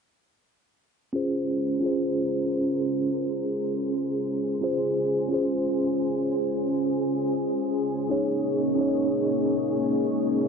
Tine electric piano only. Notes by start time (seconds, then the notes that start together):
1.13 C#4 F4 G#4 C5
1.80 C#4 F4 G#4
1.86 C5
4.61 C#4 F4 G#4 C5
5.29 C#4 F4 G#4
5.34 C5
8.09 C#4 D#4 G#4 C#5
8.75 C#4 D#4 G#4
8.81 C#5